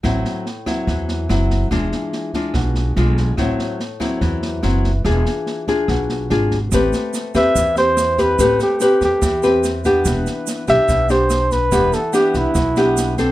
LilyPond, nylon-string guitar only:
\new Staff \with { instrumentName = "Nylon-string guitar" } { \time 4/4 \key a \dorian \tempo 4 = 144 << { <fis c' e'>4 r8 <fis c' e'>4. <fis c' e'>4 | <gis d' f'>4. <gis d' f'>4. <gis d' f'>4 | <fis c' e'>4 r8 <fis c' e'>4. <fis c' e'>8 r8 | <d' f' gis'>4. <d' f' gis'>4. <d' f' gis'>8 r8 |
\key a \minor <c' g' b'>4. <c' g' b'>4 <c' g'>4 <c' g' b'>8 | <c' g' b'>4 <c' g' b'>4 r8 <c' g' b'>4 <b d' g'>8~ | <b d' g'>4. <b d' g'>4 <d' g'>4. | <b d' g'>8 r8 <b d' g'>4 r8 <b d' g'>4 <c' d' a'>8 | } \\ { a,2 e2 | e2 b,2 | a,2 e2 | e2 b,2 |
a2 e2 | a2 e2 | e2 b,2 | e2 b,2 | } >> }